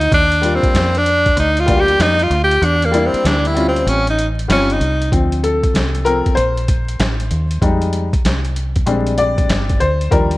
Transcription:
Already playing: fingered electric bass D2, tenor saxophone D#4
0.01 closed hi-hat
0.12 fingered electric bass D#2, tenor saxophone D4, kick, closed hi-hat
0.32 closed hi-hat
0.42 upright piano G3 A#3 D4 F4, closed hi-hat
0.55 tenor saxophone C4
0.63 muted fingered electric bass stroke, kick, closed hi-hat
0.74 fingered electric bass F2, snare, closed hi-hat
0.95 tenor saxophone D4, closed hi-hat
1.06 closed hi-hat
1.26 kick, closed hi-hat
1.37 fingered electric bass D2, tenor saxophone D#4, closed hi-hat
1.57 tenor saxophone F4, closed hi-hat
1.66 upright piano G3 A#3 D4 F#4, kick, closed hi-hat
1.76 upright piano G4
1.81 tenor saxophone G4
1.88 closed hi-hat
2.00 fingered electric bass F2, tenor saxophone D#4, snare, closed hi-hat
2.19 tenor saxophone F4, closed hi-hat
2.30 fingered electric bass D2, closed hi-hat
2.44 tenor saxophone G4
2.51 closed hi-hat
2.62 fingered electric bass E2, tenor saxophone D4, closed hi-hat
2.82 tenor saxophone A#3, closed hi-hat
2.91 upright piano G3 A#3 D4 E4, closed hi-hat
3.07 tenor saxophone C4
3.14 muted fingered electric bass stroke, closed hi-hat
3.24 fingered electric bass D2, tenor saxophone D4, snare, closed hi-hat
3.45 tenor saxophone E4, closed hi-hat
3.54 upright piano G3 C4 C#4 F4, closed hi-hat
3.68 tenor saxophone C4
3.76 closed hi-hat
3.86 fingered electric bass A1, tenor saxophone C#4, closed hi-hat
4.07 tenor saxophone D#4, closed hi-hat
4.19 closed hi-hat
4.39 closed hi-hat
4.48 fingered electric bass G1, upright piano G3 C4 C#4 F4, tenor saxophone C#4, snare, closed hi-hat
4.70 tenor saxophone D#4, closed hi-hat
4.80 fingered electric bass C2, closed hi-hat
5.02 closed hi-hat
5.12 fingered electric bass D2, upright piano F3 C4, kick, closed hi-hat
5.32 closed hi-hat
5.43 upright piano A4, closed hi-hat
5.63 muted fingered electric bass stroke, kick, closed hi-hat
5.74 fingered electric bass C2, snare, closed hi-hat
5.95 closed hi-hat
6.05 upright piano F3 C4 A4 A#4, closed hi-hat
6.26 muted fingered electric bass stroke, kick, closed hi-hat
6.35 fingered electric bass A#1, upright piano C5, closed hi-hat
6.57 closed hi-hat
6.68 kick, closed hi-hat
6.88 closed hi-hat
6.99 fingered electric bass A1, snare, closed hi-hat
7.20 closed hi-hat
7.31 fingered electric bass D#2, closed hi-hat
7.51 closed hi-hat
7.62 fingered electric bass F2, upright piano G3 G#3 D#4, kick, closed hi-hat
7.82 closed hi-hat
7.93 closed hi-hat
8.13 muted fingered electric bass stroke, kick, closed hi-hat
8.25 fingered electric bass C2, snare, closed hi-hat
8.45 closed hi-hat
8.56 closed hi-hat
8.76 kick, closed hi-hat
8.86 fingered electric bass A#1, upright piano G3 G#3 C4 D4, closed hi-hat
9.07 closed hi-hat
9.18 upright piano D5, closed hi-hat
9.38 kick, closed hi-hat
9.49 fingered electric bass G1, snare, closed hi-hat
9.70 kick, closed hi-hat
9.80 fingered electric bass D2, upright piano C5, closed hi-hat
10.01 closed hi-hat
10.10 fingered electric bass D#2, upright piano F3 G3 D4 A#4, kick, closed hi-hat
10.31 closed hi-hat

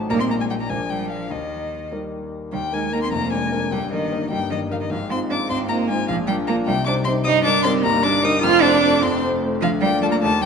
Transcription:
Already playing: grand piano A1 A2 F#3 D#4 C5
0.10 grand piano A#1 A#2 G3 D#4 A#4, cello A#3, violin A#5
0.20 cello C4, violin C6
0.30 cello A#3, violin A#5
0.40 cello G#3, violin G#5
0.50 cello G3, violin G5
0.60 cello A#3, violin A#5
0.69 grand piano A#1 A#2 F3 D4 A#4, cello G#3, violin G#5
0.90 cello G3, violin G5
1.09 cello F3, violin F5
1.29 grand piano D#2 D#3, cello D#3, violin D#5
1.92 grand piano G3 D#4 A#4
2.52 grand piano D#2 D#3, cello G3, violin G5
2.72 cello G#3, grand piano A#3 D#4 A#4, violin G#5
2.92 cello A#3, grand piano A#3 D#4 A#4, violin A#5
3.02 cello C4, violin C6
3.11 grand piano F1 F2, cello A#3, violin A#5
3.31 cello G#3, grand piano A#3 D4 A#4, violin G#5
3.51 grand piano A#3 D4 A#4
3.71 grand piano G1 G2, cello G3, violin G5
3.91 cello D#3, grand piano A#3 D#4 A#4, violin D#5
4.12 grand piano A#3 D#4 A#4
4.30 grand piano G1 G2, cello G3, violin G5
4.50 cello D#3, grand piano A#3 D#4 A#4, violin D#5
4.70 cello F3, grand piano A#3 D#4 A#4, violin F5
4.81 cello D#3, violin D#5
4.90 grand piano G#1 G#2, cello F3, violin F5
5.10 cello C4, grand piano C4 D#4 F4, violin C6
5.30 grand piano C4 D#4 F4, cello D4, violin D6
5.49 grand piano G#1 G#2, cello C4, violin C6
5.68 cello A#3, grand piano C4 D#4 F4, violin A#5
5.89 cello G#3, grand piano C4 D#4 F4, violin G#5
6.08 grand piano A#1 A#2, cello F3, violin F5
6.27 cello G3, grand piano A#3 D4 F4, violin G5
6.47 grand piano A#3 D4 F4, cello A#3, violin A#5
6.66 grand piano C2 C3, cello G3, violin G5
6.86 grand piano G3 D#4 C5, cello D4, violin D6
7.04 grand piano G3 D#4 C5, cello C4, violin C6
7.24 grand piano G1 G2, cello D#4, violin D#6
7.44 grand piano G3 D#4 A#4, cello D4, violin D6
7.63 grand piano G3 D#4 A#4, cello C4, violin C6
7.83 grand piano G1 G2, cello A#3, violin A#5
8.03 grand piano G3 D#4 A#4, cello D4, violin D6
8.23 grand piano G3 D#4 A#4, cello D#4, violin D#6
8.42 grand piano F1 F2, cello F4, violin F6
8.61 grand piano A3 C4 C5, cello D4, violin D6
8.83 grand piano A3 C4 C5
9.02 grand piano F1 F2, cello C4, violin C6
9.22 grand piano A3 C4 C5
9.43 grand piano A3 C4 C5
9.61 grand piano D2 D3, cello F3, violin F5
9.81 cello G3, grand piano A#3 F4 D5, violin G5
10.01 cello A3, grand piano A#3 F4 D5, violin A5
10.11 cello A#3, violin A#5
10.21 grand piano D#2 D#3, cello A3, violin A5
10.42 cello G3, violin G5

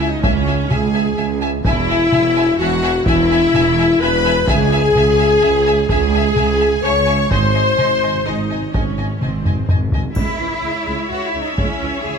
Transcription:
Already playing: cello section C#2, tuba C#2, double bass section C#2
0.00 violin section E5 G#5
0.07 viola section D#4, french horn section D#4, violin section D#5
0.23 cello section C#2, double bass section C#2, tuba C#2, viola section C#4, french horn section C#4, violin section C#5 E5 G#5, taiko
0.47 violin section E5 G#5
0.70 double bass section C#2, cello section C#2, tuba C#2, viola section G#4, french horn section G#4, violin section E5 G#5, taiko mid
0.94 violin section E5 G#5
1.17 tuba C#2, double bass section C#2, cello section C#2, violin section E5 G#5
1.41 violin section E5 G#5
1.64 tuba E1, double bass section E1, cello section E2, french horn section E4, viola section E4, violin section E5 G#5, taiko
1.90 violin section E5 G#5
2.12 tuba E1, double bass section E1, cello section E2, violin section E5 G#5, taiko mid
2.37 violin section E5 G#5
2.59 tuba E1, double bass section E1, cello section E2, french horn section F#4, viola section F#4, violin section E5 F#5 G#5
2.83 violin section E5 G#5
3.06 double bass section E1, tuba E1, cello section E2, french horn section E4, viola section E4, violin section E5 G#5, taiko
3.31 violin section E5 G#5
3.53 double bass section E1, tuba E1, cello section E2, violin section E5 G#5, taiko mid
3.79 violin section E5 G#5
4.00 tuba E1, double bass section E1, cello section E2, french horn section B4, viola section B4, violin section E5 G#5 B5
4.25 violin section E5 G#5
4.48 cello section C#2, double bass section C#2, tuba C#2, timpani C#3, viola section G#4, french horn section G#4, violin section E5 G#5, taiko
4.72 violin section E5 G#5
4.95 double bass section C#2, cello section C#2, tuba C#2, violin section E5 G#5, taiko mid
5.19 violin section E5 G#5
5.42 tuba C#2, cello section C#2, double bass section C#2, violin section E5 G#5
5.67 violin section E5 G#5
5.89 cello section C#2, double bass section C#2, tuba C#2, viola section G#4, french horn section G#4, violin section E5 G#5, taiko
6.14 violin section E5 G#5
6.36 cello section C#2, double bass section C#2, tuba C#2, violin section E5 G#5, taiko mid
6.60 violin section E5 G#5
6.83 cello section C#2, double bass section C#2, tuba C#2, french horn section C#5, viola section C#5, violin section E5 G#5 C#6
7.07 violin section E5 G#5
7.31 double bass section G#1, tuba G#1, cello section G#2, french horn section C5, viola section C5, violin section D#5 G#5 C6, taiko
7.39 timpani G#2
7.53 violin section D#5 G#5
7.76 double bass section G#1, tuba G#1, timpani G#2, cello section G#2, violin section D#5 G#5, taiko mid
7.92 timpani G#2
7.99 timpani G#2
8.03 violin section D#5 G#5
8.08 timpani G#2
8.15 timpani G#2
8.22 timpani G#2, cello section G#2, violin section D#5
8.26 double bass section G#1, tuba G#1, timpani G#2, viola section D#4, french horn section D#4, violin section D#5 G#5
8.38 timpani G#2
8.45 timpani G#2
8.50 timpani G#2, violin section D#5 G#5
8.60 timpani G#2
8.67 timpani G#2
8.73 double bass section G#1, tuba G#1, cello section G#2, timpani G#2, viola section C#4, french horn section C#4, violin section C#5 D#5 G#5, taiko
8.82 timpani G#2
8.89 timpani G#2
8.97 timpani G#2, violin section D#5 G#5
9.05 timpani G#2
9.12 timpani G#2
9.20 tuba G#1, double bass section G#1, timpani G#2, cello section G#2, french horn section C4, viola section C4, violin section C5 D#5 G#5, taiko mid
9.28 timpani G#2
9.35 timpani G#2
9.43 timpani G#2, violin section D#5 G#5, taiko low-mid
9.50 timpani G#2
9.57 timpani G#2
9.65 double bass section G#1, tuba G#1, timpani G#2, cello section G#2, taiko low-mid
9.69 timpani G#2, violin section D#5 G#5
9.80 timpani G#2
9.88 timpani G#2
9.92 timpani G#2, violin section D#5 G#5, taiko low
10.03 timpani G#2
10.14 double bass section C#2, tuba C#2, viola section G#3 E4, cello section E4, violin section C#5 E5, taiko, triangle
10.39 double bass section C#2, tuba C#2, viola section E3
10.63 double bass section C#2, tuba C#2, viola section C#3, french horn section G#3
10.86 double bass section C#2, tuba C#2, viola section G#3
11.10 double bass section C#2, tuba C#2, viola section E3, cello section F#4, violin section F#5
11.26 cello section E4, violin section E5
11.34 tuba C#2, double bass section C#2, viola section C#3
11.41 cello section D#4, violin section D#5
11.57 double bass section C#2, tuba C#2, french horn section F#3, viola section G#3, cello section C#4, violin section C#5, taiko
11.81 double bass section C#2, tuba C#2, viola section E3
12.04 double bass section C#2, tuba C#2, viola section C#3, french horn section E3, cello section G#4, violin section G#5

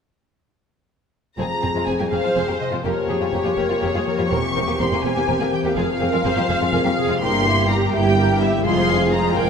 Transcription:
1.38 double bass section F1, cello section F2, harp F2, french horn section C4 G#4, violin section C4 G#4 A#5
1.62 double bass section F1, cello section F2, violin section C4 G#4, harp C4
1.75 cello section F2, violin section G#3 F4
1.87 double bass section F1, cello section F2, violin section C4 G#4 G#5, harp G#4
1.99 cello section F2, violin section A#3 G4
2.11 double bass section F1, cello section F2, violin section C4 G#4 F5, harp C5, viola section C5
2.23 cello section F2, violin section G#3 F4
2.35 double bass section F1, cello section F2, violin section C4 G#4, harp G#4
2.47 cello section F2, violin section A#3 G4
2.60 harp C3, violin section D#5
2.71 cello section F2, violin section G#3 F4
2.84 double bass section F1, harp F2, cello section F2, violin section A#3 G4 C#5, french horn section A#3 G4, viola section A#4
3.08 double bass section F1, cello section F2, violin section A#3 G4, harp C#4, viola section G#4
3.21 cello section F2, violin section G3 F4
3.32 double bass section F1, cello section F2, violin section A#3 G4, harp G4, viola section G4
3.45 cello section F2, violin section G#3 F4
3.57 double bass section F1, cello section F2, violin section A#3 G4, harp A#4, viola section A#4
3.69 cello section F2, violin section G3 F4
3.81 double bass section F1, cello section F2, violin section A#3 G4, harp G4, viola section G#4
3.94 cello section F2, violin section G#3 F4
4.06 harp F3, viola section A#4
4.18 cello section F2, violin section G3 F4
4.31 double bass section E1, harp E2, cello section E2, violin section C4 A#4 C#6, french horn section C4 A#4, viola section G4
4.56 double bass section E1, cello section E2, violin section C4 A#4, harp C4
4.67 cello section E2, violin section A#3 G4
4.79 double bass section E1, cello section E2, violin section C4 A#4 C6, harp G4
4.92 cello section E2, violin section A#3 G#4
5.03 double bass section E1, cello section E2, violin section C4 A#4 G#5, harp A#4
5.16 cello section E2, violin section A#3 G4
5.28 double bass section E1, cello section E2, violin section C4 A#4, harp G4
5.40 cello section E2, violin section A#3 G#4
5.52 harp E3, violin section G5
5.64 cello section E2, violin section A#3 G4
5.75 double bass section F1, cello section F2, harp F2, violin section C4 G#4 F5, viola section G#4
6.00 double bass section F1, cello section F2, violin section C4 G#4, harp C4, viola section A#4
6.12 cello section F2, violin section G#3 F4
6.24 double bass section F1, cello section F2, violin section C4 G#4, harp F4, viola section C5
6.36 cello section F2, violin section A#3 G4
6.48 double bass section F1, cello section F2, violin section C4 G#4, french horn section G#4, harp G#4, viola section C5
6.61 cello section F2, violin section G#3 F4
6.72 double bass section F1, cello section F2, violin section C4 G#4, harp F4, viola section A#4
6.84 cello section F2, violin section A#3 G4
6.97 harp C3, viola section G#4
7.08 cello section F2, violin section G#3 F4
7.21 double bass section G1, harp G2, cello section G2, french horn section A#3 E4, viola section G4, violin section G4 A#4 C6
7.45 harp A#3, violin section E4 G4
7.69 harp E4, violin section G4 A#4 A#5
7.93 double bass section G1, cello section G2, french horn section A#3 E4, violin section E4 G4 G5, harp A#4
8.16 harp E4, violin section G4 A#4
8.40 harp G3, violin section E4 G4 E5
8.64 double bass section F1, cello section F2, harp F2, french horn section G#3 F4, violin section F4 C5 C6, viola section G#4
8.88 harp G#3, violin section G#4 F5
9.12 harp F4, violin section F4 C5 A#5
9.36 double bass section F1, cello section F2, violin section G#4 F5 G5, viola section A#4, harp C5

